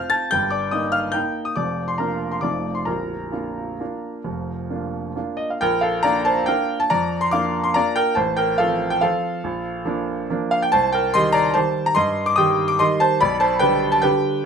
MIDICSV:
0, 0, Header, 1, 2, 480
1, 0, Start_track
1, 0, Key_signature, -2, "major"
1, 0, Tempo, 416956
1, 374, Time_signature, 3, 2, 24, 8
1, 2297, Tempo, 451128
1, 6137, Tempo, 435098
1, 7577, Tempo, 419287
1, 10937, Tempo, 435414
1, 11897, Tempo, 414651
1, 16225, End_track
2, 0, Start_track
2, 0, Title_t, "Grand piano"
2, 0, Program_c, 0, 0
2, 0, Note_on_c, 0, 60, 47
2, 0, Note_on_c, 0, 65, 51
2, 0, Note_on_c, 0, 89, 100
2, 111, Note_on_c, 0, 93, 103
2, 119, Note_on_c, 0, 81, 77
2, 125, Note_off_c, 0, 89, 0
2, 322, Note_off_c, 0, 60, 0
2, 324, Note_off_c, 0, 65, 0
2, 347, Note_off_c, 0, 81, 0
2, 354, Note_on_c, 0, 91, 102
2, 361, Note_off_c, 0, 93, 0
2, 371, Note_on_c, 0, 79, 75
2, 372, Note_on_c, 0, 43, 61
2, 376, Note_on_c, 0, 31, 55
2, 561, Control_c, 0, 64, 127
2, 581, Note_on_c, 0, 86, 84
2, 589, Note_off_c, 0, 79, 0
2, 594, Note_on_c, 0, 74, 67
2, 597, Note_off_c, 0, 91, 0
2, 821, Note_off_c, 0, 74, 0
2, 823, Note_on_c, 0, 87, 76
2, 829, Note_off_c, 0, 43, 0
2, 831, Note_off_c, 0, 31, 0
2, 832, Note_off_c, 0, 86, 0
2, 833, Note_on_c, 0, 58, 45
2, 833, Note_on_c, 0, 75, 63
2, 840, Note_on_c, 0, 63, 49
2, 1057, Note_on_c, 0, 89, 90
2, 1063, Note_on_c, 0, 77, 68
2, 1064, Note_off_c, 0, 75, 0
2, 1076, Note_off_c, 0, 87, 0
2, 1282, Note_off_c, 0, 58, 0
2, 1285, Note_off_c, 0, 63, 0
2, 1286, Note_on_c, 0, 91, 87
2, 1302, Note_on_c, 0, 79, 67
2, 1304, Note_off_c, 0, 77, 0
2, 1310, Note_on_c, 0, 63, 49
2, 1311, Note_on_c, 0, 58, 42
2, 1319, Note_off_c, 0, 89, 0
2, 1347, Control_c, 0, 64, 0
2, 1653, Note_off_c, 0, 79, 0
2, 1670, Note_on_c, 0, 87, 75
2, 1672, Note_off_c, 0, 91, 0
2, 1755, Note_off_c, 0, 63, 0
2, 1756, Note_off_c, 0, 58, 0
2, 1791, Note_on_c, 0, 86, 80
2, 1800, Note_off_c, 0, 87, 0
2, 1803, Note_on_c, 0, 41, 55
2, 1804, Note_on_c, 0, 29, 50
2, 1804, Note_on_c, 0, 74, 62
2, 2053, Control_c, 0, 64, 127
2, 2144, Note_off_c, 0, 74, 0
2, 2162, Note_on_c, 0, 84, 77
2, 2163, Note_off_c, 0, 86, 0
2, 2278, Note_off_c, 0, 41, 0
2, 2279, Note_off_c, 0, 29, 0
2, 2279, Note_on_c, 0, 82, 70
2, 2292, Note_off_c, 0, 84, 0
2, 2293, Note_on_c, 0, 58, 42
2, 2298, Note_on_c, 0, 70, 56
2, 2303, Note_on_c, 0, 62, 41
2, 2310, Note_on_c, 0, 65, 44
2, 2624, Note_off_c, 0, 70, 0
2, 2637, Note_on_c, 0, 84, 67
2, 2639, Note_off_c, 0, 82, 0
2, 2723, Note_off_c, 0, 58, 0
2, 2728, Note_off_c, 0, 62, 0
2, 2731, Note_off_c, 0, 65, 0
2, 2737, Note_on_c, 0, 86, 76
2, 2753, Note_on_c, 0, 41, 55
2, 2754, Note_on_c, 0, 29, 44
2, 2756, Note_on_c, 0, 57, 39
2, 2757, Note_on_c, 0, 74, 57
2, 2762, Note_off_c, 0, 84, 0
2, 2767, Note_on_c, 0, 63, 39
2, 2771, Note_on_c, 0, 65, 38
2, 2784, Control_c, 0, 64, 0
2, 2987, Control_c, 0, 64, 127
2, 3094, Note_off_c, 0, 74, 0
2, 3097, Note_on_c, 0, 84, 67
2, 3110, Note_off_c, 0, 86, 0
2, 3194, Note_off_c, 0, 57, 0
2, 3199, Note_off_c, 0, 63, 0
2, 3201, Note_off_c, 0, 65, 0
2, 3210, Note_on_c, 0, 82, 65
2, 3220, Note_off_c, 0, 41, 0
2, 3221, Note_off_c, 0, 29, 0
2, 3223, Note_on_c, 0, 70, 53
2, 3224, Note_on_c, 0, 22, 44
2, 3228, Note_off_c, 0, 84, 0
2, 3229, Note_on_c, 0, 34, 50
2, 3259, Control_c, 0, 64, 0
2, 3489, Control_c, 0, 64, 127
2, 3699, Note_off_c, 0, 22, 0
2, 3702, Note_off_c, 0, 34, 0
2, 3708, Note_on_c, 0, 58, 37
2, 3711, Note_on_c, 0, 62, 38
2, 3723, Note_on_c, 0, 65, 44
2, 4170, Note_off_c, 0, 58, 0
2, 4172, Note_off_c, 0, 62, 0
2, 4178, Note_off_c, 0, 65, 0
2, 4220, Note_on_c, 0, 58, 37
2, 4222, Note_on_c, 0, 62, 37
2, 4224, Note_on_c, 0, 65, 43
2, 4234, Control_c, 0, 64, 0
2, 4657, Note_off_c, 0, 58, 0
2, 4658, Note_off_c, 0, 62, 0
2, 4659, Note_off_c, 0, 65, 0
2, 4690, Note_on_c, 0, 41, 51
2, 4694, Note_on_c, 0, 29, 44
2, 4952, Control_c, 0, 64, 127
2, 5152, Note_off_c, 0, 41, 0
2, 5154, Note_off_c, 0, 29, 0
2, 5177, Note_on_c, 0, 62, 39
2, 5178, Note_on_c, 0, 58, 38
2, 5184, Note_on_c, 0, 65, 42
2, 5612, Note_off_c, 0, 58, 0
2, 5612, Note_off_c, 0, 62, 0
2, 5615, Note_off_c, 0, 65, 0
2, 5663, Control_c, 0, 64, 0
2, 5663, Note_on_c, 0, 58, 38
2, 5669, Note_on_c, 0, 62, 38
2, 5674, Note_on_c, 0, 65, 43
2, 5847, Note_off_c, 0, 70, 0
2, 5884, Note_off_c, 0, 82, 0
2, 5886, Note_on_c, 0, 75, 76
2, 6014, Note_off_c, 0, 75, 0
2, 6030, Note_on_c, 0, 77, 58
2, 6101, Note_off_c, 0, 58, 0
2, 6104, Note_off_c, 0, 62, 0
2, 6106, Note_off_c, 0, 65, 0
2, 6141, Note_on_c, 0, 79, 104
2, 6142, Note_off_c, 0, 77, 0
2, 6152, Note_on_c, 0, 34, 66
2, 6152, Note_on_c, 0, 70, 84
2, 6326, Control_c, 0, 64, 127
2, 6365, Note_off_c, 0, 70, 0
2, 6366, Note_on_c, 0, 77, 91
2, 6375, Note_off_c, 0, 79, 0
2, 6381, Note_on_c, 0, 69, 70
2, 6599, Note_off_c, 0, 69, 0
2, 6603, Note_on_c, 0, 82, 111
2, 6605, Note_off_c, 0, 34, 0
2, 6608, Note_off_c, 0, 77, 0
2, 6618, Note_on_c, 0, 74, 80
2, 6620, Note_on_c, 0, 58, 53
2, 6628, Note_on_c, 0, 65, 56
2, 6629, Note_on_c, 0, 62, 54
2, 6839, Note_off_c, 0, 74, 0
2, 6848, Note_off_c, 0, 82, 0
2, 6848, Note_on_c, 0, 81, 104
2, 6862, Note_on_c, 0, 72, 78
2, 7057, Note_off_c, 0, 58, 0
2, 7062, Note_off_c, 0, 62, 0
2, 7062, Note_off_c, 0, 65, 0
2, 7082, Note_on_c, 0, 79, 100
2, 7085, Note_off_c, 0, 72, 0
2, 7095, Note_off_c, 0, 81, 0
2, 7101, Note_on_c, 0, 70, 74
2, 7103, Note_on_c, 0, 58, 51
2, 7106, Note_on_c, 0, 65, 56
2, 7108, Note_on_c, 0, 62, 51
2, 7114, Control_c, 0, 64, 0
2, 7438, Note_off_c, 0, 70, 0
2, 7453, Note_off_c, 0, 79, 0
2, 7453, Note_on_c, 0, 81, 96
2, 7536, Note_off_c, 0, 58, 0
2, 7537, Note_off_c, 0, 65, 0
2, 7538, Note_off_c, 0, 62, 0
2, 7566, Note_on_c, 0, 82, 101
2, 7569, Note_on_c, 0, 74, 81
2, 7573, Note_off_c, 0, 81, 0
2, 7577, Note_on_c, 0, 41, 72
2, 7790, Control_c, 0, 64, 127
2, 7903, Note_off_c, 0, 74, 0
2, 7920, Note_on_c, 0, 84, 101
2, 7926, Note_off_c, 0, 82, 0
2, 8037, Note_off_c, 0, 41, 0
2, 8040, Note_on_c, 0, 86, 106
2, 8046, Note_off_c, 0, 84, 0
2, 8054, Note_on_c, 0, 77, 84
2, 8057, Note_on_c, 0, 58, 54
2, 8060, Note_on_c, 0, 62, 51
2, 8066, Note_on_c, 0, 65, 53
2, 8393, Note_off_c, 0, 77, 0
2, 8409, Note_on_c, 0, 84, 96
2, 8412, Note_off_c, 0, 86, 0
2, 8499, Note_off_c, 0, 58, 0
2, 8501, Note_off_c, 0, 62, 0
2, 8504, Note_off_c, 0, 65, 0
2, 8531, Note_on_c, 0, 82, 109
2, 8538, Note_off_c, 0, 84, 0
2, 8548, Note_on_c, 0, 74, 86
2, 8549, Note_on_c, 0, 58, 52
2, 8556, Note_on_c, 0, 62, 51
2, 8557, Control_c, 0, 64, 0
2, 8560, Note_on_c, 0, 65, 58
2, 8772, Note_off_c, 0, 74, 0
2, 8775, Note_on_c, 0, 79, 108
2, 8780, Note_off_c, 0, 82, 0
2, 8781, Note_on_c, 0, 70, 81
2, 8980, Note_off_c, 0, 58, 0
2, 8983, Note_off_c, 0, 62, 0
2, 8985, Note_off_c, 0, 65, 0
2, 8997, Note_on_c, 0, 81, 92
2, 9003, Note_off_c, 0, 70, 0
2, 9013, Note_on_c, 0, 33, 68
2, 9013, Note_on_c, 0, 72, 74
2, 9017, Note_off_c, 0, 79, 0
2, 9240, Note_off_c, 0, 72, 0
2, 9243, Control_c, 0, 64, 127
2, 9244, Note_on_c, 0, 79, 93
2, 9249, Note_off_c, 0, 81, 0
2, 9257, Note_on_c, 0, 70, 75
2, 9488, Note_off_c, 0, 33, 0
2, 9488, Note_off_c, 0, 70, 0
2, 9488, Note_on_c, 0, 77, 101
2, 9498, Note_off_c, 0, 79, 0
2, 9502, Note_on_c, 0, 69, 74
2, 9506, Note_on_c, 0, 53, 52
2, 9512, Note_on_c, 0, 65, 56
2, 9513, Note_on_c, 0, 60, 53
2, 9843, Note_off_c, 0, 69, 0
2, 9860, Note_on_c, 0, 79, 96
2, 9861, Note_off_c, 0, 77, 0
2, 9945, Note_off_c, 0, 53, 0
2, 9948, Note_off_c, 0, 65, 0
2, 9949, Note_off_c, 0, 60, 0
2, 9985, Note_on_c, 0, 77, 92
2, 9986, Note_off_c, 0, 79, 0
2, 9998, Note_on_c, 0, 69, 72
2, 10003, Note_on_c, 0, 53, 53
2, 10004, Note_on_c, 0, 60, 50
2, 10008, Control_c, 0, 64, 0
2, 10013, Note_on_c, 0, 65, 55
2, 10422, Note_off_c, 0, 53, 0
2, 10423, Note_off_c, 0, 60, 0
2, 10427, Note_off_c, 0, 65, 0
2, 10475, Note_on_c, 0, 34, 67
2, 10647, Control_c, 0, 64, 127
2, 10930, Note_off_c, 0, 34, 0
2, 10945, Note_on_c, 0, 53, 52
2, 10949, Note_on_c, 0, 58, 54
2, 10960, Note_on_c, 0, 62, 60
2, 11386, Note_off_c, 0, 69, 0
2, 11387, Note_off_c, 0, 53, 0
2, 11389, Note_off_c, 0, 58, 0
2, 11395, Note_off_c, 0, 62, 0
2, 11424, Note_off_c, 0, 77, 0
2, 11441, Control_c, 0, 64, 0
2, 11443, Note_on_c, 0, 53, 53
2, 11443, Note_on_c, 0, 58, 53
2, 11454, Note_on_c, 0, 62, 57
2, 11671, Note_on_c, 0, 77, 102
2, 11786, Note_off_c, 0, 77, 0
2, 11797, Note_on_c, 0, 79, 95
2, 11862, Note_off_c, 0, 53, 0
2, 11862, Note_off_c, 0, 58, 0
2, 11867, Note_off_c, 0, 62, 0
2, 11900, Note_on_c, 0, 81, 115
2, 11905, Note_off_c, 0, 79, 0
2, 11914, Note_on_c, 0, 72, 85
2, 11922, Note_on_c, 0, 36, 69
2, 12120, Control_c, 0, 64, 127
2, 12128, Note_off_c, 0, 72, 0
2, 12137, Note_off_c, 0, 81, 0
2, 12139, Note_on_c, 0, 79, 98
2, 12161, Note_on_c, 0, 70, 72
2, 12371, Note_off_c, 0, 70, 0
2, 12373, Note_off_c, 0, 36, 0
2, 12376, Note_off_c, 0, 79, 0
2, 12385, Note_on_c, 0, 84, 120
2, 12399, Note_on_c, 0, 75, 91
2, 12400, Note_on_c, 0, 51, 56
2, 12401, Note_on_c, 0, 55, 57
2, 12414, Note_on_c, 0, 67, 60
2, 12602, Note_on_c, 0, 82, 111
2, 12610, Note_off_c, 0, 75, 0
2, 12618, Note_off_c, 0, 84, 0
2, 12618, Note_on_c, 0, 74, 85
2, 12827, Note_off_c, 0, 51, 0
2, 12828, Note_off_c, 0, 55, 0
2, 12834, Note_off_c, 0, 67, 0
2, 12846, Note_off_c, 0, 74, 0
2, 12848, Note_on_c, 0, 81, 103
2, 12855, Note_off_c, 0, 82, 0
2, 12858, Note_on_c, 0, 72, 80
2, 12867, Note_on_c, 0, 51, 56
2, 12869, Note_on_c, 0, 55, 55
2, 12870, Control_c, 0, 64, 0
2, 12878, Note_on_c, 0, 67, 56
2, 13205, Note_off_c, 0, 72, 0
2, 13224, Note_on_c, 0, 82, 101
2, 13226, Note_off_c, 0, 81, 0
2, 13306, Note_off_c, 0, 51, 0
2, 13307, Note_off_c, 0, 55, 0
2, 13312, Note_off_c, 0, 67, 0
2, 13322, Note_on_c, 0, 84, 111
2, 13336, Note_on_c, 0, 75, 87
2, 13343, Note_on_c, 0, 43, 73
2, 13345, Note_off_c, 0, 82, 0
2, 13586, Control_c, 0, 64, 127
2, 13667, Note_off_c, 0, 75, 0
2, 13685, Note_off_c, 0, 84, 0
2, 13686, Note_on_c, 0, 86, 112
2, 13799, Note_on_c, 0, 87, 114
2, 13801, Note_off_c, 0, 43, 0
2, 13812, Note_off_c, 0, 86, 0
2, 13815, Note_on_c, 0, 51, 55
2, 13821, Note_on_c, 0, 79, 90
2, 13825, Note_on_c, 0, 67, 62
2, 13827, Note_on_c, 0, 55, 58
2, 14160, Note_off_c, 0, 79, 0
2, 14170, Note_on_c, 0, 86, 106
2, 14175, Note_off_c, 0, 87, 0
2, 14262, Note_off_c, 0, 51, 0
2, 14267, Note_off_c, 0, 55, 0
2, 14267, Note_off_c, 0, 67, 0
2, 14299, Note_on_c, 0, 84, 111
2, 14302, Note_off_c, 0, 86, 0
2, 14308, Note_on_c, 0, 75, 88
2, 14311, Note_on_c, 0, 51, 56
2, 14313, Note_on_c, 0, 55, 56
2, 14318, Note_on_c, 0, 67, 61
2, 14322, Control_c, 0, 64, 0
2, 14540, Note_off_c, 0, 75, 0
2, 14543, Note_on_c, 0, 81, 114
2, 14553, Note_off_c, 0, 84, 0
2, 14556, Note_on_c, 0, 72, 87
2, 14753, Note_off_c, 0, 51, 0
2, 14754, Note_off_c, 0, 55, 0
2, 14757, Note_off_c, 0, 67, 0
2, 14779, Note_on_c, 0, 83, 108
2, 14780, Note_off_c, 0, 72, 0
2, 14786, Note_on_c, 0, 74, 79
2, 14790, Note_off_c, 0, 81, 0
2, 14798, Note_on_c, 0, 35, 74
2, 15004, Note_on_c, 0, 81, 108
2, 15008, Note_off_c, 0, 74, 0
2, 15011, Note_on_c, 0, 72, 83
2, 15013, Control_c, 0, 64, 127
2, 15021, Note_off_c, 0, 83, 0
2, 15230, Note_on_c, 0, 79, 108
2, 15238, Note_off_c, 0, 72, 0
2, 15239, Note_on_c, 0, 71, 82
2, 15250, Note_off_c, 0, 35, 0
2, 15250, Note_on_c, 0, 50, 58
2, 15251, Note_off_c, 0, 81, 0
2, 15254, Note_on_c, 0, 67, 61
2, 15257, Note_on_c, 0, 55, 58
2, 15586, Note_off_c, 0, 71, 0
2, 15604, Note_on_c, 0, 81, 103
2, 15607, Note_off_c, 0, 79, 0
2, 15692, Note_off_c, 0, 50, 0
2, 15694, Note_off_c, 0, 67, 0
2, 15695, Note_off_c, 0, 55, 0
2, 15718, Note_on_c, 0, 79, 103
2, 15733, Note_on_c, 0, 71, 80
2, 15735, Note_off_c, 0, 81, 0
2, 15735, Note_on_c, 0, 50, 55
2, 15742, Note_on_c, 0, 55, 58
2, 15744, Note_on_c, 0, 67, 63
2, 15763, Control_c, 0, 64, 0
2, 16166, Note_off_c, 0, 50, 0
2, 16170, Note_off_c, 0, 55, 0
2, 16171, Note_off_c, 0, 67, 0
2, 16225, Note_off_c, 0, 71, 0
2, 16225, Note_off_c, 0, 79, 0
2, 16225, End_track
0, 0, End_of_file